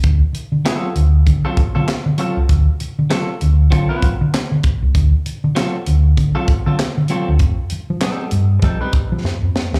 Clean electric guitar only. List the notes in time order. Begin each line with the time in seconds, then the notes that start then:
0.65 F#3 C4 F4 A4
1.45 F#3 C4 F4 A4
1.75 F#3 C4 F4 A4
2.18 F#3 C4 F4 A4
3.10 F#3 C4 F4 A4
3.71 F#3 C4 F4 A4
3.89 F#3 C4 F4 B4
5.55 F#3 C4 F4 A4
6.35 F#3 C4 F4 A4
6.66 F#3 C4 F4 A4
7.10 F#3 C4 F4 A4
8.02 G3 C4 D#4 A4
8.62 G3 C4 D#4 A4
8.81 G3 C4 D#4 B4